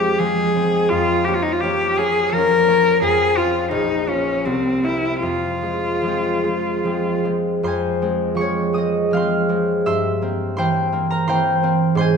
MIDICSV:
0, 0, Header, 1, 3, 480
1, 0, Start_track
1, 0, Key_signature, -4, "minor"
1, 0, Tempo, 710900
1, 606, Time_signature, 3, 2, 24, 8
1, 3003, Tempo, 768246
1, 3483, Tempo, 809717
1, 4923, Tempo, 740741
1, 6363, Tempo, 706714
1, 7928, End_track
2, 0, Start_track
2, 0, Title_t, "Cello"
2, 0, Program_c, 0, 42
2, 0, Note_on_c, 0, 67, 54
2, 124, Note_on_c, 0, 68, 59
2, 134, Note_off_c, 0, 67, 0
2, 602, Note_on_c, 0, 65, 64
2, 612, Note_off_c, 0, 68, 0
2, 840, Note_on_c, 0, 67, 51
2, 850, Note_off_c, 0, 65, 0
2, 906, Note_on_c, 0, 65, 53
2, 916, Note_off_c, 0, 67, 0
2, 961, Note_on_c, 0, 63, 52
2, 971, Note_off_c, 0, 65, 0
2, 1027, Note_on_c, 0, 65, 51
2, 1037, Note_off_c, 0, 63, 0
2, 1083, Note_on_c, 0, 67, 59
2, 1093, Note_off_c, 0, 65, 0
2, 1326, Note_on_c, 0, 68, 70
2, 1336, Note_off_c, 0, 67, 0
2, 1576, Note_on_c, 0, 70, 74
2, 1586, Note_off_c, 0, 68, 0
2, 2040, Note_off_c, 0, 70, 0
2, 2046, Note_on_c, 0, 68, 68
2, 2274, Note_on_c, 0, 65, 57
2, 2284, Note_off_c, 0, 68, 0
2, 2504, Note_off_c, 0, 65, 0
2, 2508, Note_on_c, 0, 63, 57
2, 2756, Note_on_c, 0, 61, 54
2, 2766, Note_off_c, 0, 63, 0
2, 3003, Note_on_c, 0, 60, 49
2, 3012, Note_off_c, 0, 61, 0
2, 3249, Note_on_c, 0, 64, 47
2, 3258, Note_off_c, 0, 60, 0
2, 3486, Note_off_c, 0, 64, 0
2, 3492, Note_on_c, 0, 65, 45
2, 4668, Note_off_c, 0, 65, 0
2, 7928, End_track
3, 0, Start_track
3, 0, Title_t, "Harp"
3, 0, Program_c, 1, 46
3, 0, Note_on_c, 1, 41, 33
3, 0, Note_on_c, 1, 53, 28
3, 0, Note_on_c, 1, 56, 27
3, 0, Note_on_c, 1, 60, 27
3, 121, Note_off_c, 1, 53, 0
3, 127, Note_off_c, 1, 56, 0
3, 128, Note_off_c, 1, 60, 0
3, 129, Note_on_c, 1, 53, 29
3, 134, Note_on_c, 1, 56, 29
3, 138, Note_on_c, 1, 60, 32
3, 369, Note_off_c, 1, 56, 0
3, 371, Note_off_c, 1, 60, 0
3, 376, Note_on_c, 1, 56, 30
3, 381, Note_on_c, 1, 60, 33
3, 607, Note_off_c, 1, 41, 0
3, 615, Note_on_c, 1, 41, 39
3, 631, Note_off_c, 1, 56, 0
3, 632, Note_off_c, 1, 60, 0
3, 862, Note_on_c, 1, 58, 30
3, 867, Note_on_c, 1, 61, 32
3, 1092, Note_off_c, 1, 53, 0
3, 1096, Note_off_c, 1, 58, 0
3, 1098, Note_off_c, 1, 61, 0
3, 1100, Note_on_c, 1, 53, 31
3, 1102, Note_on_c, 1, 58, 33
3, 1108, Note_on_c, 1, 61, 37
3, 1331, Note_off_c, 1, 61, 0
3, 1332, Note_off_c, 1, 58, 0
3, 1338, Note_on_c, 1, 58, 31
3, 1341, Note_on_c, 1, 61, 33
3, 1566, Note_off_c, 1, 53, 0
3, 1568, Note_on_c, 1, 53, 34
3, 1580, Note_off_c, 1, 58, 0
3, 1581, Note_off_c, 1, 61, 0
3, 1588, Note_on_c, 1, 58, 36
3, 1608, Note_on_c, 1, 61, 40
3, 1803, Note_off_c, 1, 61, 0
3, 1805, Note_off_c, 1, 58, 0
3, 1812, Note_on_c, 1, 58, 34
3, 1813, Note_on_c, 1, 61, 36
3, 2030, Note_off_c, 1, 41, 0
3, 2038, Note_on_c, 1, 41, 43
3, 2058, Note_off_c, 1, 61, 0
3, 2059, Note_off_c, 1, 58, 0
3, 2268, Note_on_c, 1, 60, 29
3, 2273, Note_on_c, 1, 65, 35
3, 2505, Note_on_c, 1, 34, 44
3, 2524, Note_off_c, 1, 60, 0
3, 2525, Note_off_c, 1, 41, 0
3, 2750, Note_off_c, 1, 65, 0
3, 2751, Note_on_c, 1, 58, 31
3, 2758, Note_on_c, 1, 65, 32
3, 3007, Note_on_c, 1, 36, 37
3, 3020, Note_off_c, 1, 34, 0
3, 3024, Note_off_c, 1, 65, 0
3, 3028, Note_off_c, 1, 53, 0
3, 3237, Note_off_c, 1, 58, 0
3, 3245, Note_on_c, 1, 58, 26
3, 3250, Note_on_c, 1, 60, 28
3, 3488, Note_on_c, 1, 41, 30
3, 3503, Note_off_c, 1, 36, 0
3, 3503, Note_off_c, 1, 58, 0
3, 3721, Note_off_c, 1, 60, 0
3, 3724, Note_on_c, 1, 56, 20
3, 3728, Note_on_c, 1, 60, 23
3, 3958, Note_on_c, 1, 53, 24
3, 3966, Note_off_c, 1, 56, 0
3, 3968, Note_off_c, 1, 60, 0
3, 3973, Note_on_c, 1, 56, 23
3, 3992, Note_on_c, 1, 60, 25
3, 4198, Note_off_c, 1, 56, 0
3, 4200, Note_off_c, 1, 60, 0
3, 4205, Note_on_c, 1, 56, 20
3, 4207, Note_on_c, 1, 60, 22
3, 4441, Note_off_c, 1, 53, 0
3, 4443, Note_off_c, 1, 56, 0
3, 4445, Note_off_c, 1, 60, 0
3, 4446, Note_on_c, 1, 53, 21
3, 4452, Note_on_c, 1, 56, 23
3, 4452, Note_on_c, 1, 60, 25
3, 4679, Note_off_c, 1, 56, 0
3, 4683, Note_off_c, 1, 60, 0
3, 4686, Note_on_c, 1, 56, 20
3, 4690, Note_on_c, 1, 60, 25
3, 4913, Note_off_c, 1, 41, 0
3, 4915, Note_on_c, 1, 41, 37
3, 4922, Note_on_c, 1, 84, 57
3, 4929, Note_on_c, 1, 72, 41
3, 4941, Note_on_c, 1, 80, 43
3, 5157, Note_off_c, 1, 56, 0
3, 5160, Note_off_c, 1, 60, 0
3, 5164, Note_on_c, 1, 56, 28
3, 5168, Note_on_c, 1, 60, 29
3, 5376, Note_off_c, 1, 53, 0
3, 5378, Note_on_c, 1, 53, 30
3, 5391, Note_on_c, 1, 85, 62
3, 5392, Note_off_c, 1, 56, 0
3, 5393, Note_off_c, 1, 60, 0
3, 5400, Note_on_c, 1, 56, 31
3, 5401, Note_on_c, 1, 60, 32
3, 5418, Note_on_c, 1, 73, 45
3, 5623, Note_off_c, 1, 56, 0
3, 5626, Note_on_c, 1, 56, 27
3, 5634, Note_on_c, 1, 87, 58
3, 5635, Note_off_c, 1, 60, 0
3, 5642, Note_on_c, 1, 60, 31
3, 5659, Note_on_c, 1, 75, 47
3, 5806, Note_off_c, 1, 85, 0
3, 5869, Note_off_c, 1, 56, 0
3, 5871, Note_on_c, 1, 56, 30
3, 5877, Note_off_c, 1, 53, 0
3, 5882, Note_off_c, 1, 84, 0
3, 5883, Note_on_c, 1, 53, 31
3, 5886, Note_off_c, 1, 60, 0
3, 5886, Note_on_c, 1, 89, 66
3, 5890, Note_on_c, 1, 77, 53
3, 5894, Note_on_c, 1, 60, 35
3, 5909, Note_on_c, 1, 84, 50
3, 6050, Note_off_c, 1, 87, 0
3, 6112, Note_off_c, 1, 56, 0
3, 6112, Note_off_c, 1, 60, 0
3, 6118, Note_on_c, 1, 56, 31
3, 6121, Note_on_c, 1, 60, 34
3, 6354, Note_off_c, 1, 84, 0
3, 6357, Note_on_c, 1, 43, 42
3, 6359, Note_on_c, 1, 88, 69
3, 6360, Note_on_c, 1, 76, 53
3, 6363, Note_on_c, 1, 84, 52
3, 6377, Note_off_c, 1, 56, 0
3, 6378, Note_off_c, 1, 73, 0
3, 6379, Note_off_c, 1, 89, 0
3, 6380, Note_off_c, 1, 53, 0
3, 6380, Note_off_c, 1, 75, 0
3, 6382, Note_off_c, 1, 77, 0
3, 6383, Note_off_c, 1, 41, 0
3, 6384, Note_off_c, 1, 80, 0
3, 6598, Note_off_c, 1, 60, 0
3, 6602, Note_on_c, 1, 58, 28
3, 6607, Note_on_c, 1, 60, 29
3, 6830, Note_off_c, 1, 84, 0
3, 6838, Note_on_c, 1, 84, 64
3, 6839, Note_off_c, 1, 58, 0
3, 6839, Note_off_c, 1, 72, 0
3, 6842, Note_on_c, 1, 52, 33
3, 6845, Note_off_c, 1, 60, 0
3, 6845, Note_on_c, 1, 58, 34
3, 6848, Note_on_c, 1, 79, 51
3, 6849, Note_on_c, 1, 72, 49
3, 6853, Note_on_c, 1, 60, 38
3, 7073, Note_off_c, 1, 58, 0
3, 7080, Note_off_c, 1, 60, 0
3, 7081, Note_on_c, 1, 58, 34
3, 7088, Note_on_c, 1, 60, 32
3, 7203, Note_on_c, 1, 82, 66
3, 7214, Note_on_c, 1, 70, 47
3, 7312, Note_off_c, 1, 84, 0
3, 7317, Note_off_c, 1, 52, 0
3, 7320, Note_off_c, 1, 72, 0
3, 7320, Note_on_c, 1, 84, 69
3, 7321, Note_off_c, 1, 58, 0
3, 7321, Note_off_c, 1, 79, 0
3, 7324, Note_on_c, 1, 52, 37
3, 7325, Note_off_c, 1, 60, 0
3, 7327, Note_on_c, 1, 58, 36
3, 7330, Note_on_c, 1, 72, 58
3, 7331, Note_on_c, 1, 79, 53
3, 7333, Note_on_c, 1, 60, 38
3, 7554, Note_off_c, 1, 58, 0
3, 7555, Note_off_c, 1, 60, 0
3, 7561, Note_on_c, 1, 58, 39
3, 7565, Note_on_c, 1, 60, 37
3, 7778, Note_on_c, 1, 44, 49
3, 7784, Note_off_c, 1, 84, 0
3, 7791, Note_off_c, 1, 72, 0
3, 7793, Note_on_c, 1, 84, 73
3, 7799, Note_on_c, 1, 72, 59
3, 7816, Note_on_c, 1, 80, 57
3, 7819, Note_off_c, 1, 43, 0
3, 7819, Note_off_c, 1, 88, 0
3, 7820, Note_off_c, 1, 58, 0
3, 7820, Note_off_c, 1, 82, 0
3, 7821, Note_off_c, 1, 76, 0
3, 7822, Note_off_c, 1, 52, 0
3, 7823, Note_off_c, 1, 79, 0
3, 7825, Note_off_c, 1, 70, 0
3, 7928, Note_off_c, 1, 44, 0
3, 7928, Note_off_c, 1, 60, 0
3, 7928, Note_off_c, 1, 72, 0
3, 7928, Note_off_c, 1, 80, 0
3, 7928, Note_off_c, 1, 84, 0
3, 7928, End_track
0, 0, End_of_file